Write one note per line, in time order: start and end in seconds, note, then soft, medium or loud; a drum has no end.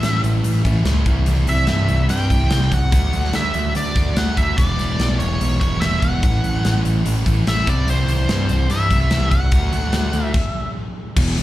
0.00 0.20 A1 medium
0.00 0.63 A2 medium
0.00 0.63 E3 medium
0.00 0.64 A3 medium
0.00 0.63 C#4 loud
0.00 0.62 E4 medium
0.00 0.21 E5 medium
0.00 snare loud
0.00 closed hi-hat medium
0.23 0.41 A1 medium
0.23 closed hi-hat medium
0.44 0.62 A1 medium
0.44 closed hi-hat medium
0.64 0.82 A1 medium
0.64 0.83 A2 medium
0.64 0.84 E3 medium
0.64 0.85 A3 medium
0.64 0.84 C#4 medium
0.64 0.84 E4 medium
0.64 kick medium
0.64 closed hi-hat medium
0.84 1.03 C#2 medium
0.84 1.04 A2 medium
0.84 1.04 E3 medium
0.84 1.05 A3 medium
0.84 1.06 C#4 medium
0.84 1.06 E4 medium
0.84 snare loud
0.84 closed hi-hat medium
1.04 1.24 C2 medium
1.04 2.07 C3 medium
1.04 2.08 E3 medium
1.04 2.08 G3 medium
1.04 2.09 C4 medium
1.04 2.09 E4 loud
1.04 kick loud
1.04 closed hi-hat medium
1.26 1.45 C2 medium
1.26 closed hi-hat medium
1.47 1.65 C2 medium
1.47 2.06 E5 medium
1.47 closed hi-hat medium
1.67 1.86 G2 medium
1.67 snare loud
1.67 closed hi-hat medium
1.88 2.07 C2 medium
1.88 closed hi-hat medium
2.09 2.27 G2 medium
2.09 2.28 C3 medium
2.09 2.29 E3 medium
2.09 2.29 G3 medium
2.09 2.29 C4 medium
2.09 2.28 E4 medium
2.09 2.73 G5 loud
2.09 closed hi-hat medium
2.29 2.48 C2 medium
2.29 2.72 C3 medium
2.29 2.71 E3 medium
2.29 2.71 G3 medium
2.29 2.70 C4 medium
2.29 2.70 E4 medium
2.29 kick medium
2.29 closed hi-hat medium
2.50 2.68 C2 medium
2.50 snare loud
2.50 closed hi-hat medium
2.62 snare soft
2.72 2.89 C2 medium
2.72 3.36 F#5 loud
2.72 kick medium
2.72 closed hi-hat medium
2.91 3.10 D2 medium
2.91 3.94 D3 medium
2.91 3.94 A3 medium
2.91 3.94 D4 medium
2.91 3.93 F#4 medium
2.91 kick loud
2.91 closed hi-hat medium
3.13 3.30 D2 medium
3.13 closed hi-hat medium
3.24 snare soft
3.33 3.51 D2 medium
3.33 3.73 E5 medium
3.33 snare loud
3.33 closed hi-hat medium
3.54 3.72 D2 medium
3.54 closed hi-hat medium
3.75 3.93 D2 medium
3.75 4.18 D5 medium
3.75 closed hi-hat medium
3.94 4.13 D2 medium
3.94 4.13 D3 medium
3.94 4.14 A3 medium
3.94 4.15 D4 medium
3.94 4.14 F#4 medium
3.94 kick medium
3.94 closed hi-hat medium
4.14 4.34 D2 medium
4.14 4.55 D3 medium
4.14 4.56 A3 medium
4.14 4.57 D4 medium
4.14 4.57 F#4 medium
4.14 4.38 F#5 medium
4.14 snare loud
4.14 closed hi-hat medium
4.37 4.55 D2 medium
4.37 4.56 E5 medium
4.37 kick medium
4.37 closed hi-hat medium
4.56 4.75 E1 medium
4.56 5.58 E2 medium
4.56 5.59 B2 medium
4.56 5.62 E3 medium
4.56 5.59 G#3 medium
4.56 5.60 B3 medium
4.56 5.60 E4 loud
4.56 5.19 D5 medium
4.56 kick loud
4.56 closed hi-hat medium
4.78 4.96 E1 medium
4.78 snare soft
4.78 closed hi-hat medium
4.99 5.16 B1 medium
4.99 snare loud
4.99 closed hi-hat medium
5.19 5.37 E1 medium
5.19 5.59 C#5 medium
5.19 closed hi-hat medium
5.41 5.58 B1 medium
5.41 closed hi-hat medium
5.60 5.78 E1 medium
5.60 5.80 E2 medium
5.60 5.80 B2 medium
5.60 5.82 E3 medium
5.60 5.81 G#3 medium
5.60 5.80 B3 medium
5.60 5.84 E4 medium
5.60 5.80 C#5 medium
5.60 kick medium
5.60 closed hi-hat medium
5.81 5.99 E1 medium
5.81 6.21 E2 medium
5.81 6.21 B2 medium
5.81 6.23 E3 medium
5.81 6.22 G#3 medium
5.81 6.22 B3 medium
5.81 6.24 E4 medium
5.81 6.02 E5 medium
5.81 snare loud
5.81 closed hi-hat medium
5.93 snare soft
6.00 6.20 E1 medium
6.00 6.80 F#5 medium
6.00 kick medium
6.00 closed hi-hat medium
6.22 6.41 A1 medium
6.22 7.24 A2 medium
6.22 7.24 E3 medium
6.22 7.25 A3 loud
6.22 7.24 C#4 medium
6.22 7.23 E4 medium
6.22 kick loud
6.22 closed hi-hat medium
6.44 6.61 A1 medium
6.44 closed hi-hat medium
6.65 6.82 A1 medium
6.65 snare loud
6.65 closed hi-hat medium
6.85 7.02 A1 medium
6.85 closed hi-hat medium
7.05 7.23 A1 medium
7.05 closed hi-hat medium
7.24 7.44 A1 medium
7.24 7.44 A2 medium
7.24 7.45 E3 medium
7.24 7.45 A3 medium
7.24 7.45 C#4 medium
7.24 7.44 E4 medium
7.24 kick medium
7.24 closed hi-hat medium
7.45 7.64 A1 medium
7.45 7.65 A2 medium
7.45 7.66 E3 medium
7.45 7.66 A3 medium
7.45 7.66 C#4 medium
7.45 7.67 E4 medium
7.45 7.68 E5 medium
7.45 snare loud
7.45 closed hi-hat medium
7.58 snare soft
7.66 7.85 C2 medium
7.66 8.68 C3 medium
7.66 8.68 E3 medium
7.66 8.69 G3 medium
7.66 8.69 C4 medium
7.66 8.70 E4 medium
7.66 7.89 D5 medium
7.66 kick loud
7.66 closed hi-hat medium
7.87 8.05 C2 medium
7.87 8.73 C5 medium
7.87 closed hi-hat medium
8.08 8.26 C2 medium
8.08 closed hi-hat medium
8.29 8.46 G2 medium
8.29 snare loud
8.29 closed hi-hat medium
8.49 8.67 C2 medium
8.49 closed hi-hat medium
8.69 8.87 G2 medium
8.69 8.89 C3 medium
8.69 8.89 E3 medium
8.69 8.90 G3 medium
8.69 8.90 C4 medium
8.69 8.89 E4 medium
8.69 9.28 E5 medium
8.69 closed hi-hat medium
8.90 9.08 C2 medium
8.90 9.32 C3 medium
8.90 9.31 E3 medium
8.90 9.31 G3 medium
8.90 9.31 C4 medium
8.90 9.30 E4 medium
8.90 kick medium
8.90 closed hi-hat medium
9.11 9.29 C2 medium
9.11 snare loud
9.11 closed hi-hat medium
9.31 9.49 C2 medium
9.31 10.25 F#5 medium
9.31 kick medium
9.31 closed hi-hat medium
9.52 9.70 D2 medium
9.52 10.33 D3 medium
9.52 10.33 A3 medium
9.52 10.34 D4 medium
9.52 10.34 F#4 medium
9.52 kick loud
9.52 closed hi-hat medium
9.72 9.90 D2 medium
9.72 closed hi-hat medium
9.93 10.11 D2 medium
9.93 snare loud
9.93 closed hi-hat medium
10.13 10.31 D2 medium
10.13 closed hi-hat medium
10.25 10.71 E5 medium
10.34 kick loud
10.34 crash medium
11.16 11.35 E1 loud
11.16 11.36 E2 loud
11.16 11.36 B2 loud
11.16 11.37 E3 loud
11.16 kick loud
11.16 crash loud
11.37 11.43 E1 medium
11.37 11.43 E2 medium
11.37 11.43 B2 medium
11.37 open hi-hat medium